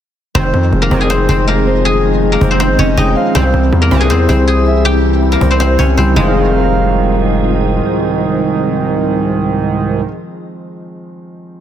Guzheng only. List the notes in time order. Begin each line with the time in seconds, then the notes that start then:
0.35 C4 C5
0.82 A#3 A#4
1.01 G#4 G#5
1.10 C4 C5
1.29 C4 C5
1.48 A#3 A#4
1.85 G#4 G#5
2.32 A#3 A#4
2.51 C4 C5
2.60 C4 C5
2.79 C#4 C#5
2.97 D#4 D#5
3.35 C4 C5
3.82 A#3 A#4
4.01 G#4 G#5
4.10 C4 C5
4.29 C4 C5
4.48 G#4 G#5
4.85 G4 G5
5.32 A#3 A#4
5.51 C4 C5
5.60 C4 C5
5.79 C#4 C#5
5.98 C4 C5
6.16 G#3